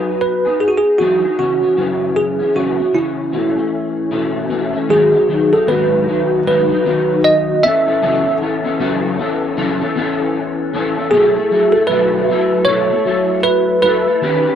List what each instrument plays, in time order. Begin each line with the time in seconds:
Already playing: clean electric guitar F#3 B3 D#4 G#4, tine electric piano B4
0.21 tine electric piano B4
0.45 clean electric guitar B3 D#4 G#4
0.60 tine electric piano G#4
0.68 tine electric piano F#4
0.77 tine electric piano G#4
0.98 clean electric guitar E3 F#3 B3 D#4 G#4, tine electric piano F#4
1.24 clean electric guitar B3 D#4 G#4
1.39 clean electric guitar C#3 E3 B3 C#4, tine electric piano F#4
1.61 clean electric guitar E3 B3 C#4
1.77 clean electric guitar F#2 C#3 E3 B3 C#4
2.16 tine electric piano G#4
2.39 clean electric guitar E3 B3 C#4
2.55 clean electric guitar F#2 C#3 E3 B3 C#4, tine electric piano F#4
2.78 clean electric guitar E3 B3 C#4
2.93 clean electric guitar C#3 E3 B3 C#4, tine electric piano E4
3.32 clean electric guitar B2 E3 A3 C#4
3.56 clean electric guitar E3 A3 C#4
4.11 clean electric guitar B2 E3 A3 C#4
4.50 clean electric guitar B2 E3 A3 C#4
4.73 clean electric guitar E3 A3 C#4
4.89 clean electric guitar G#2 D#3 F#3 B3 D#4, tine electric piano G#4
5.11 clean electric guitar F#3 B3 D#4
5.28 clean electric guitar D#3 F#3 B3 D#4
5.52 clean electric guitar F#3 B3 D#4, tine electric piano A4
5.67 clean electric guitar G#2 D#3 F#3 B3 D#4, tine electric piano B4
6.07 clean electric guitar D#3 F#3 B3 D#4
6.46 clean electric guitar G#2 D#3 F#3 B3 D#4, tine electric piano B4
6.69 clean electric guitar F#3 B3 D#4
6.84 clean electric guitar D#3 F#3 B3 D#4
7.24 tine electric piano D#5
7.63 clean electric guitar E3 B3 C#4 A4, tine electric piano E5
7.87 clean electric guitar E3 B3 C#4 A4
8.02 clean electric guitar F#2 C#3 E3 B3 C#4 A4
8.25 clean electric guitar E3 B3 C#4 A4
8.41 clean electric guitar E3 B3 C#4 A4
8.64 clean electric guitar E3 B3 C#4 A4
8.80 clean electric guitar F#2 C#3 E3 B3 C#4 A4
9.19 clean electric guitar E3 B3 C#4 A4
9.57 clean electric guitar F#2 C#3 E3 B3 C#4 A4
9.80 clean electric guitar E3 B3 C#4 A4
9.95 clean electric guitar E3 B3 C#4 A4
10.74 clean electric guitar E3 B3 C#4 A4
10.97 clean electric guitar E3 B3 C#4 A4
11.11 clean electric guitar B2 F#3 A3 E4 A4, tine electric piano G#4
11.36 clean electric guitar A3 E4 A4
11.51 clean electric guitar F#3 A3 E4 A4
11.72 clean electric guitar A3 E4 A4, tine electric piano A4
11.87 clean electric guitar B2 F#3 A3 E4 A4, tine electric piano B4
12.29 clean electric guitar F#3 A3 E4 A4
12.65 clean electric guitar B2 F#3 A3 E4 A4, tine electric piano C#5
12.89 clean electric guitar A3 E4 A4
13.05 clean electric guitar F#3 A3 E4 A4
13.43 tine electric piano B4
13.82 clean electric guitar F#3 A3 E4 A4, tine electric piano B4
14.07 clean electric guitar A3 E4 A4
14.21 clean electric guitar D#3 B3 C#4 G4 B4
14.44 clean electric guitar C#4 G4 B4